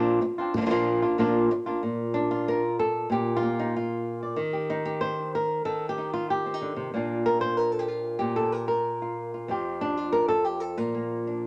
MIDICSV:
0, 0, Header, 1, 3, 480
1, 0, Start_track
1, 0, Key_signature, -2, "major"
1, 0, Tempo, 319319
1, 815, Time_signature, 4, 2, 24, 8
1, 17240, End_track
2, 0, Start_track
2, 0, Title_t, "Nylon-string guitar"
2, 0, Program_c, 0, 24
2, 0, Note_on_c, 0, 46, 79
2, 0, Note_on_c, 0, 53, 79
2, 0, Note_on_c, 0, 60, 91
2, 0, Note_on_c, 0, 62, 88
2, 0, Note_on_c, 0, 65, 89
2, 301, Note_off_c, 0, 46, 0
2, 309, Note_off_c, 0, 53, 0
2, 315, Note_off_c, 0, 62, 0
2, 317, Note_off_c, 0, 60, 0
2, 323, Note_off_c, 0, 65, 0
2, 573, Note_on_c, 0, 65, 53
2, 594, Note_on_c, 0, 62, 48
2, 610, Note_on_c, 0, 60, 44
2, 804, Note_off_c, 0, 65, 0
2, 815, Note_off_c, 0, 62, 0
2, 822, Note_off_c, 0, 60, 0
2, 849, Note_on_c, 0, 53, 53
2, 855, Note_on_c, 0, 58, 54
2, 868, Note_on_c, 0, 62, 56
2, 870, Note_on_c, 0, 65, 59
2, 901, Note_off_c, 0, 53, 0
2, 910, Note_off_c, 0, 58, 0
2, 915, Note_off_c, 0, 62, 0
2, 919, Note_off_c, 0, 65, 0
2, 919, Note_on_c, 0, 53, 64
2, 928, Note_on_c, 0, 58, 65
2, 933, Note_on_c, 0, 62, 63
2, 937, Note_on_c, 0, 65, 63
2, 974, Note_off_c, 0, 53, 0
2, 977, Note_off_c, 0, 58, 0
2, 982, Note_off_c, 0, 65, 0
2, 983, Note_off_c, 0, 62, 0
2, 992, Note_on_c, 0, 53, 66
2, 995, Note_on_c, 0, 58, 67
2, 1001, Note_on_c, 0, 62, 80
2, 1001, Note_on_c, 0, 65, 79
2, 1044, Note_off_c, 0, 53, 0
2, 1047, Note_off_c, 0, 58, 0
2, 1047, Note_off_c, 0, 62, 0
2, 1055, Note_on_c, 0, 46, 71
2, 1056, Note_off_c, 0, 65, 0
2, 1062, Note_on_c, 0, 53, 78
2, 1065, Note_on_c, 0, 58, 81
2, 1065, Note_on_c, 0, 62, 82
2, 1074, Note_on_c, 0, 65, 83
2, 1518, Note_off_c, 0, 65, 0
2, 1525, Note_off_c, 0, 46, 0
2, 1528, Note_off_c, 0, 53, 0
2, 1530, Note_off_c, 0, 58, 0
2, 1530, Note_off_c, 0, 62, 0
2, 1536, Note_on_c, 0, 65, 58
2, 1546, Note_on_c, 0, 62, 54
2, 1562, Note_on_c, 0, 58, 46
2, 1766, Note_off_c, 0, 65, 0
2, 1771, Note_off_c, 0, 62, 0
2, 1772, Note_off_c, 0, 58, 0
2, 1776, Note_on_c, 0, 46, 75
2, 1779, Note_on_c, 0, 53, 74
2, 1790, Note_on_c, 0, 58, 85
2, 1796, Note_on_c, 0, 62, 80
2, 1802, Note_on_c, 0, 65, 86
2, 2245, Note_off_c, 0, 46, 0
2, 2247, Note_off_c, 0, 53, 0
2, 2252, Note_off_c, 0, 58, 0
2, 2256, Note_off_c, 0, 62, 0
2, 2259, Note_off_c, 0, 65, 0
2, 2497, Note_on_c, 0, 65, 48
2, 2509, Note_on_c, 0, 62, 47
2, 2519, Note_on_c, 0, 58, 40
2, 2727, Note_off_c, 0, 65, 0
2, 2733, Note_off_c, 0, 62, 0
2, 2737, Note_off_c, 0, 58, 0
2, 2749, Note_on_c, 0, 46, 67
2, 3217, Note_on_c, 0, 62, 82
2, 3472, Note_on_c, 0, 65, 80
2, 3731, Note_on_c, 0, 70, 103
2, 3936, Note_off_c, 0, 62, 0
2, 4184, Note_off_c, 0, 65, 0
2, 4193, Note_off_c, 0, 70, 0
2, 4201, Note_on_c, 0, 69, 91
2, 4636, Note_off_c, 0, 46, 0
2, 4654, Note_on_c, 0, 46, 63
2, 4668, Note_off_c, 0, 69, 0
2, 4688, Note_on_c, 0, 67, 92
2, 5058, Note_on_c, 0, 65, 90
2, 5149, Note_on_c, 0, 58, 44
2, 5403, Note_on_c, 0, 63, 79
2, 5512, Note_off_c, 0, 67, 0
2, 5630, Note_off_c, 0, 63, 0
2, 5637, Note_off_c, 0, 65, 0
2, 5659, Note_on_c, 0, 65, 71
2, 6347, Note_off_c, 0, 65, 0
2, 6353, Note_on_c, 0, 74, 45
2, 6555, Note_off_c, 0, 58, 0
2, 6556, Note_off_c, 0, 74, 0
2, 6561, Note_on_c, 0, 51, 70
2, 6575, Note_off_c, 0, 46, 0
2, 6812, Note_on_c, 0, 67, 43
2, 7062, Note_on_c, 0, 63, 81
2, 7291, Note_off_c, 0, 67, 0
2, 7297, Note_on_c, 0, 67, 83
2, 7529, Note_on_c, 0, 72, 94
2, 7778, Note_off_c, 0, 63, 0
2, 8012, Note_off_c, 0, 72, 0
2, 8016, Note_off_c, 0, 67, 0
2, 8042, Note_on_c, 0, 70, 82
2, 8475, Note_off_c, 0, 51, 0
2, 8491, Note_off_c, 0, 70, 0
2, 8493, Note_on_c, 0, 51, 66
2, 8497, Note_on_c, 0, 69, 92
2, 8849, Note_off_c, 0, 69, 0
2, 8855, Note_on_c, 0, 67, 87
2, 8990, Note_on_c, 0, 63, 42
2, 9214, Note_off_c, 0, 67, 0
2, 9223, Note_on_c, 0, 65, 80
2, 9458, Note_off_c, 0, 65, 0
2, 9475, Note_on_c, 0, 67, 71
2, 9701, Note_off_c, 0, 63, 0
2, 9711, Note_on_c, 0, 60, 42
2, 9829, Note_off_c, 0, 60, 0
2, 9829, Note_on_c, 0, 63, 37
2, 9944, Note_on_c, 0, 50, 59
2, 10163, Note_off_c, 0, 50, 0
2, 10169, Note_on_c, 0, 48, 59
2, 10410, Note_off_c, 0, 48, 0
2, 10411, Note_off_c, 0, 51, 0
2, 10420, Note_off_c, 0, 63, 0
2, 10423, Note_off_c, 0, 67, 0
2, 10427, Note_on_c, 0, 46, 67
2, 10436, Note_on_c, 0, 58, 45
2, 10451, Note_on_c, 0, 62, 44
2, 10465, Note_on_c, 0, 65, 46
2, 10910, Note_on_c, 0, 70, 91
2, 11132, Note_off_c, 0, 70, 0
2, 11138, Note_on_c, 0, 72, 85
2, 11380, Note_off_c, 0, 72, 0
2, 11380, Note_on_c, 0, 70, 96
2, 11602, Note_off_c, 0, 70, 0
2, 11602, Note_on_c, 0, 69, 85
2, 11710, Note_off_c, 0, 65, 0
2, 11710, Note_on_c, 0, 67, 82
2, 11847, Note_off_c, 0, 69, 0
2, 11847, Note_on_c, 0, 65, 83
2, 12292, Note_off_c, 0, 67, 0
2, 12310, Note_on_c, 0, 67, 85
2, 12313, Note_off_c, 0, 58, 0
2, 12314, Note_off_c, 0, 46, 0
2, 12321, Note_off_c, 0, 62, 0
2, 12332, Note_on_c, 0, 46, 70
2, 12563, Note_off_c, 0, 65, 0
2, 12569, Note_on_c, 0, 69, 81
2, 12811, Note_off_c, 0, 69, 0
2, 12811, Note_on_c, 0, 70, 92
2, 13028, Note_off_c, 0, 70, 0
2, 13040, Note_off_c, 0, 67, 0
2, 13046, Note_on_c, 0, 70, 78
2, 13557, Note_on_c, 0, 65, 42
2, 14036, Note_off_c, 0, 65, 0
2, 14042, Note_on_c, 0, 65, 41
2, 14249, Note_off_c, 0, 70, 0
2, 14252, Note_off_c, 0, 46, 0
2, 14255, Note_on_c, 0, 41, 68
2, 14267, Note_on_c, 0, 53, 48
2, 14289, Note_on_c, 0, 60, 45
2, 14294, Note_on_c, 0, 67, 46
2, 14338, Note_off_c, 0, 65, 0
2, 14749, Note_on_c, 0, 62, 89
2, 14991, Note_off_c, 0, 67, 0
2, 14991, Note_on_c, 0, 65, 78
2, 15214, Note_off_c, 0, 65, 0
2, 15220, Note_on_c, 0, 70, 98
2, 15454, Note_off_c, 0, 70, 0
2, 15460, Note_on_c, 0, 69, 90
2, 15462, Note_off_c, 0, 62, 0
2, 15702, Note_off_c, 0, 69, 0
2, 15702, Note_on_c, 0, 67, 92
2, 15936, Note_off_c, 0, 67, 0
2, 15936, Note_on_c, 0, 69, 86
2, 16165, Note_off_c, 0, 60, 0
2, 16177, Note_off_c, 0, 41, 0
2, 16196, Note_on_c, 0, 46, 69
2, 16200, Note_off_c, 0, 69, 0
2, 16200, Note_on_c, 0, 70, 94
2, 16452, Note_on_c, 0, 58, 43
2, 16944, Note_on_c, 0, 62, 43
2, 17240, Note_off_c, 0, 46, 0
2, 17240, Note_off_c, 0, 53, 0
2, 17240, Note_off_c, 0, 58, 0
2, 17240, Note_off_c, 0, 62, 0
2, 17240, Note_off_c, 0, 70, 0
2, 17240, End_track
3, 0, Start_track
3, 0, Title_t, "Muted nylon-string guitar strokes"
3, 319, Note_on_c, 9, 29, 69
3, 469, Note_off_c, 9, 29, 0
3, 815, Note_on_c, 9, 29, 81
3, 966, Note_off_c, 9, 29, 0
3, 2270, Note_on_c, 9, 29, 69
3, 2420, Note_off_c, 9, 29, 0
3, 17240, End_track
0, 0, End_of_file